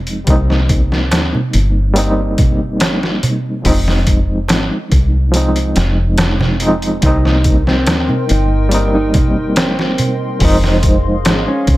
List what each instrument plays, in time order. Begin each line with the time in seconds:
Already playing: fingered electric bass F1, reed electric piano F3 G#3 C4 D#4
0.07 closed hi-hat
0.24 fingered electric bass C2, reed electric piano G3 A#3 C4, kick, closed hi-hat
0.30 reed electric piano D#4
0.50 snare
0.69 kick, closed hi-hat
0.92 snare
1.11 fingered electric bass D#2, snare, closed hi-hat, darbuka tek
1.34 darbuka dum
1.53 fingered electric bass G1, closed hi-hat
1.93 reed electric piano G3 A#3 C4, closed hi-hat
1.98 reed electric piano D#4
2.38 kick, closed hi-hat, darbuka dum
2.80 snare, closed hi-hat, darbuka tek
3.03 snare
3.23 closed hi-hat, darbuka dum
3.62 fingered electric bass F1, reed electric piano F3 G#3 C4, kick, open hi-hat
3.67 reed electric piano D#4
3.88 snare
4.07 kick, closed hi-hat
4.48 fingered electric bass G#1, snare, closed hi-hat, darbuka tek
4.92 fingered electric bass C2, kick, closed hi-hat
5.32 reed electric piano F3 G#3 C4, closed hi-hat
5.37 reed electric piano D#4
5.56 closed hi-hat
5.76 fingered electric bass F1, snare, closed hi-hat
6.18 snare, closed hi-hat, darbuka tek
6.40 snare, darbuka dum
6.60 reed electric piano F3 G#3 C4 D#4, closed hi-hat
6.82 closed hi-hat
7.01 fingered electric bass C2, reed electric piano G3 A#3 C4, clean electric guitar D#4, ambient pad A#4 D#5 G5 C6, kick, closed hi-hat
7.06 reed electric piano D#4
7.25 snare
7.44 kick, closed hi-hat
7.67 clean electric guitar C4, snare
7.87 fingered electric bass D#2, snare, closed hi-hat, darbuka tek
8.09 darbuka dum
8.29 fingered electric bass G1, clean electric guitar D#4, closed hi-hat
8.69 reed electric piano G3 A#3 C4, closed hi-hat
8.75 reed electric piano D#4
8.95 clean electric guitar D#4
9.14 kick, closed hi-hat, darbuka dum
9.56 clean electric guitar C4, snare, closed hi-hat, darbuka tek
9.79 snare
9.98 closed hi-hat, darbuka dum
10.39 fingered electric bass F1, reed electric piano F3 G#3 C5, ambient pad G#4 F5, kick, open hi-hat
10.45 reed electric piano D#4
10.64 snare
10.83 kick, closed hi-hat
11.25 fingered electric bass G#1, snare, closed hi-hat, darbuka tek
11.48 clean electric guitar C#4
11.67 fingered electric bass C2, kick, closed hi-hat